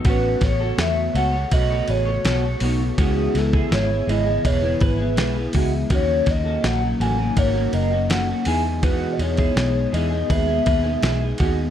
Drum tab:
RD |x-x-x-x-x-x-x-x-|x-x-x-x-x-x-x-x-|x-x-x-x-x-x-x-x-|x-xxx-x-x-x-x-x-|
HH |--------------o-|--------------o-|--------------o-|----------------|
SD |--o-o-------o---|--o-o-------o---|--o-o-------o---|----o-------o---|
BD |o-o-----o-------|o--o----o-o---o-|o-o-----o-------|o--o----o-o---o-|